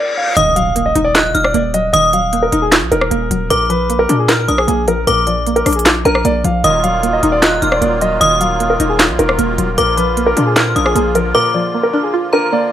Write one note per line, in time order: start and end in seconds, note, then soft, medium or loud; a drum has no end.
0.00 0.13 D5 medium
0.00 reverse cymbal medium
0.18 0.33 F5 medium
0.36 0.93 D#1 loud
0.36 1.35 D#3 medium
0.36 0.52 D#5 loud
0.36 1.11 D#6 loud
0.36 closed hi-hat loud
0.36 impact medium
0.56 1.54 F#3 medium
0.56 0.84 F5 medium
0.56 closed hi-hat medium
0.76 1.53 A#3 medium
0.76 closed hi-hat medium
0.86 1.01 D#5 medium
0.95 1.33 D#1 loud
0.95 1.34 D#4 medium
0.95 closed hi-hat medium
1.04 1.13 D5 loud
1.15 2.13 F4 medium
1.15 1.43 D#5 medium
1.15 1.34 F#6 medium
1.15 snare loud
1.15 clap loud
1.15 closed hi-hat medium
1.35 1.54 D#1 loud
1.35 2.33 D#4 medium
1.35 1.53 F6 medium
1.35 closed hi-hat medium
1.44 1.52 D5 medium
1.44 cross-stick loud
1.54 1.92 D#1 loud
1.54 2.32 A#3 loud
1.54 1.70 D5 medium
1.54 closed hi-hat medium
1.74 2.12 F#3 medium
1.74 1.90 D#5 medium
1.74 closed hi-hat medium
1.93 2.50 D#1 loud
1.93 2.92 D#3 medium
1.93 2.09 D#5 medium
1.93 2.68 D#6 loud
1.93 closed hi-hat loud
2.13 3.11 F#3 medium
2.13 2.41 F5 medium
2.13 closed hi-hat medium
2.33 3.10 A#3 medium
2.33 closed hi-hat medium
2.43 2.58 A#4 medium
2.52 2.83 D#1 loud
2.52 2.90 D#4 medium
2.52 closed hi-hat medium
2.62 2.70 G#4 medium
2.72 3.51 F4 medium
2.72 snare loud
2.72 clap loud
2.72 closed hi-hat medium
2.82 2.91 A#1 loud
2.92 3.10 D#1 loud
2.92 3.50 D#4 medium
2.92 3.47 A#4 medium
2.92 closed hi-hat medium
3.01 cross-stick loud
3.11 3.30 D#1 loud
3.11 3.50 A#3 loud
3.11 closed hi-hat medium
3.31 3.50 D#1 loud
3.31 3.50 F#3 medium
3.31 closed hi-hat medium
3.50 4.07 A#1 loud
3.50 4.48 A#2 medium
3.50 3.66 A#4 medium
3.50 4.25 D6 loud
3.50 closed hi-hat medium
3.70 4.68 F3 medium
3.70 3.98 B4 medium
3.70 closed hi-hat medium
3.90 4.66 A#3 medium
3.90 closed hi-hat medium
3.99 4.15 A#4 medium
4.09 4.47 A#2 loud
4.09 4.47 D4 loud
4.09 closed hi-hat medium
4.19 4.27 G#4 medium
4.29 5.27 F4 loud
4.29 4.56 A#4 medium
4.29 4.47 F6 medium
4.29 snare loud
4.29 clap loud
4.29 closed hi-hat medium
4.48 4.67 A#1 loud
4.48 5.46 D4 medium
4.48 4.67 D#6 medium
4.48 closed hi-hat medium
4.58 4.66 G#4 medium
4.58 cross-stick loud
4.68 5.06 A#1 loud
4.68 5.46 A#3 loud
4.68 4.84 G#4 medium
4.68 closed hi-hat medium
4.87 5.26 F3 medium
4.87 5.03 A#4 medium
4.87 closed hi-hat medium
5.07 5.64 A#1 loud
5.07 6.05 A#2 loud
5.07 5.23 A#4 medium
5.07 6.01 D6 loud
5.07 closed hi-hat loud
5.27 6.25 F3 medium
5.27 5.55 D5 medium
5.27 closed hi-hat medium
5.46 6.24 A#3 medium
5.46 closed hi-hat medium
5.56 5.72 A#4 medium
5.56 closed hi-hat medium
5.66 6.04 A#1 loud
5.66 6.04 D4 medium
5.66 cross-stick medium
5.66 closed hi-hat medium
5.66 open hi-hat medium
5.73 5.84 G#4 medium
5.73 closed hi-hat medium
5.79 closed hi-hat medium
5.86 6.64 F4 medium
5.86 snare loud
5.86 clap loud
5.86 closed hi-hat medium
6.05 6.24 A#1 loud
6.05 6.64 D4 medium
6.05 6.21 A#4 medium
6.05 6.24 A#5 medium
6.05 closed hi-hat medium
6.15 cross-stick loud
6.25 6.44 A#1 loud
6.25 6.64 A#3 loud
6.25 6.41 D5 loud
6.25 closed hi-hat medium
6.44 6.63 A#1 loud
6.44 6.64 F3 medium
6.44 6.60 F5 medium
6.44 closed hi-hat medium
6.64 7.21 D#1 loud
6.64 7.62 D#3 medium
6.64 9.75 D#3 medium
6.64 9.75 F#3 medium
6.64 12.72 A#3 medium
6.64 12.72 F4 medium
6.64 6.80 D#5 loud
6.64 7.39 D#6 loud
6.64 closed hi-hat loud
6.83 7.82 F#3 medium
6.83 7.11 F5 medium
6.83 closed hi-hat medium
7.03 7.80 A#3 medium
7.03 closed hi-hat medium
7.13 7.29 D#5 medium
7.23 7.61 D#1 loud
7.23 7.61 D#4 loud
7.23 closed hi-hat medium
7.32 7.40 D5 medium
7.42 8.41 F4 medium
7.42 7.71 D#5 medium
7.42 7.61 F#6 medium
7.42 snare loud
7.42 clap loud
7.42 closed hi-hat medium
7.62 7.81 D#1 loud
7.62 8.60 D#4 medium
7.62 7.81 F6 medium
7.62 closed hi-hat medium
7.72 7.80 D5 medium
7.72 cross-stick loud
7.81 8.19 D#1 loud
7.81 8.59 A#3 loud
7.81 7.97 D5 medium
7.81 closed hi-hat medium
8.01 8.39 F#3 medium
8.01 8.17 D#5 medium
8.01 closed hi-hat medium
8.20 8.77 D#1 loud
8.20 9.19 D#3 medium
8.20 8.36 D#5 medium
8.20 8.95 D#6 loud
8.20 closed hi-hat loud
8.41 9.39 F#3 medium
8.41 8.68 F5 medium
8.41 closed hi-hat medium
8.60 9.37 A#3 medium
8.60 closed hi-hat medium
8.70 8.85 A#4 medium
8.80 9.11 D#1 loud
8.80 9.18 D#4 loud
8.80 closed hi-hat medium
8.89 8.97 G#4 medium
8.99 9.78 F4 medium
8.99 snare loud
8.99 clap loud
8.99 closed hi-hat medium
9.09 9.19 A#1 loud
9.19 9.38 D#1 loud
9.19 9.78 D#4 medium
9.19 9.74 A#4 medium
9.19 closed hi-hat medium
9.29 cross-stick loud
9.38 9.57 D#1 loud
9.38 9.78 A#3 loud
9.38 closed hi-hat medium
9.58 9.77 D#1 loud
9.58 9.78 F#3 medium
9.58 closed hi-hat medium
9.78 10.34 A#1 loud
9.78 10.76 A#2 medium
9.78 12.72 D3 medium
9.78 12.72 F3 medium
9.78 9.93 A#4 medium
9.78 10.52 D6 loud
9.78 closed hi-hat medium
9.97 10.95 F3 medium
9.97 10.25 B4 medium
9.97 closed hi-hat medium
10.17 10.94 A#3 medium
10.17 closed hi-hat medium
10.26 10.42 A#4 medium
10.37 10.74 A#2 loud
10.37 10.74 D4 loud
10.37 closed hi-hat medium
10.47 10.54 G#4 medium
10.56 11.54 F4 medium
10.56 10.84 A#4 medium
10.56 10.75 F6 medium
10.56 snare loud
10.56 clap loud
10.56 closed hi-hat medium
10.76 10.95 A#1 loud
10.76 11.74 D4 medium
10.76 10.95 D#6 medium
10.76 closed hi-hat medium
10.86 10.94 G#4 medium
10.86 cross-stick loud
10.95 11.33 A#1 loud
10.95 11.73 A#3 loud
10.95 11.11 G#4 medium
10.95 closed hi-hat medium
11.15 11.53 F3 medium
11.15 11.31 A#4 medium
11.15 closed hi-hat medium
11.35 12.33 A#2 medium
11.35 11.50 A#4 medium
11.35 12.29 D6 loud
11.54 12.53 F3 medium
11.54 11.82 D5 medium
11.74 12.51 A#3 medium
11.83 11.99 A#4 medium
11.93 12.32 D4 loud
12.03 12.11 G#4 medium
12.14 12.72 F4 medium
12.33 12.72 D4 medium
12.33 12.49 A#4 medium
12.33 12.51 A#5 medium
12.52 12.72 A#3 loud
12.52 12.68 D5 loud